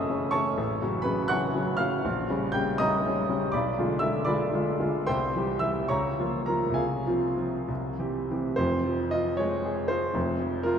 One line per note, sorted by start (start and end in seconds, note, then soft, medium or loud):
0.00 0.60 F#1 medium
0.00 0.60 F#2 medium
0.00 0.10 C#3 soft
0.00 0.10 A3 medium
0.00 0.10 C#4 medium
0.00 0.32 C#5 medium
0.00 0.30 D#5 medium
0.00 0.60 E5 medium
0.00 0.32 A5 medium
0.00 0.31 C#6 medium
0.00 0.33 D#6 medium
0.00 0.60 E6 medium
0.10 0.31 C#3 medium
0.10 0.31 A3 medium
0.10 0.31 C#4 medium
0.31 0.55 C#3 soft
0.31 0.55 A3 medium
0.31 0.56 C#4 medium
0.31 1.02 C#5 medium
0.31 1.02 A5 medium
0.31 1.05 C#6 medium
0.58 0.82 A1 medium
0.81 1.03 C#3 medium
0.81 1.04 F#3 medium
0.81 1.04 C#4 medium
1.02 1.27 C#3 medium
1.02 1.28 F#3 medium
1.02 1.28 C#4 medium
1.02 1.27 B4 medium
1.02 1.28 B5 medium
1.28 1.52 C#3 medium
1.28 1.53 F#3 medium
1.28 1.53 C#4 medium
1.28 1.76 F#5 medium
1.28 1.76 C#6 medium
1.28 1.79 F#6 loud
1.54 1.77 C#3 medium
1.54 1.77 F#3 medium
1.54 1.78 C#4 medium
1.77 2.02 C#3 medium
1.77 2.02 F#3 medium
1.77 2.03 C#4 medium
1.77 2.49 F5 medium
1.77 2.53 F6 loud
2.05 2.29 A#1 medium
2.30 2.52 C#3 medium
2.30 2.52 G3 medium
2.30 2.52 C#4 medium
2.52 2.77 C#3 medium
2.52 2.77 G3 medium
2.52 2.77 C#4 medium
2.52 2.77 G5 medium
2.52 2.78 G6 loud
2.78 3.02 C#3 medium
2.78 3.03 G3 medium
2.78 3.03 C#4 medium
2.78 3.50 D#5 medium
2.78 3.50 A#5 medium
2.78 3.53 D#6 loud
3.06 3.28 C#3 medium
3.06 3.28 G3 medium
3.06 3.28 C#4 medium
3.29 3.51 C#3 medium
3.29 3.51 G3 medium
3.29 3.51 C#4 medium
3.52 3.77 B1 medium
3.52 3.99 D5 medium
3.52 3.99 B5 medium
3.52 4.01 D6 medium
3.79 4.00 D3 medium
3.79 4.00 G#3 medium
3.79 4.01 F4 medium
3.99 4.24 D3 medium
3.99 4.24 G#3 soft
3.99 4.25 F4 medium
3.99 4.24 E5 medium
3.99 4.26 E6 loud
4.25 4.50 D3 medium
4.25 4.50 G#3 medium
4.25 4.51 F4 medium
4.25 4.50 D5 medium
4.25 4.50 B5 medium
4.25 4.51 D6 medium
4.53 4.77 D3 medium
4.53 4.77 G#3 medium
4.53 4.77 F4 medium
4.80 5.04 D3 medium
4.80 5.04 G#3 soft
4.80 5.05 F4 medium
5.07 5.34 C2 medium
5.07 5.58 C5 medium
5.07 5.58 G5 medium
5.07 5.62 C6 medium
5.35 5.60 E3 soft
5.35 5.60 G3 soft
5.35 5.60 G4 medium
5.59 5.87 E3 soft
5.59 5.88 G3 soft
5.59 5.87 E5 medium
5.59 5.89 E6 medium
5.63 5.88 G4 medium
5.88 6.18 C#2 medium
5.88 6.44 C#5 medium
5.88 6.44 A#5 medium
5.88 6.47 C#6 medium
6.18 6.45 F3 soft
6.18 6.46 A#3 soft
6.18 6.46 F4 medium
6.46 6.75 F3 soft
6.46 6.76 A#3 soft
6.46 6.76 F4 soft
6.46 6.76 A#4 medium
6.46 6.77 A#5 medium
6.70 7.03 C2 medium
6.74 7.63 G#4 medium
6.74 7.64 F5 medium
6.74 7.67 G#5 medium
7.07 7.35 F3 soft
7.07 7.35 C4 soft
7.07 7.35 F4 soft
7.37 7.65 F3 soft
7.37 7.65 C4 soft
7.37 7.65 F4 soft
7.68 7.98 C2 medium
7.99 8.27 E3 soft
7.99 8.27 C4 soft
7.99 8.27 G4 soft
8.31 8.56 E3 soft
8.31 8.56 C4 soft
8.31 8.56 G4 soft
8.56 10.11 F1 medium
8.56 10.11 F2 medium
8.56 9.12 C5 medium
8.85 9.29 F3 medium
9.11 9.55 F4 medium
9.11 9.39 D#5 medium
9.37 9.81 G#3 medium
9.37 9.90 C#5 medium
9.66 10.06 G#4 medium
9.88 10.15 F4 medium
9.88 10.63 C5 medium
10.14 10.79 F1 medium
10.14 10.79 F2 medium
10.40 10.79 F3 medium
10.63 10.79 F4 medium
10.63 10.79 A#4 medium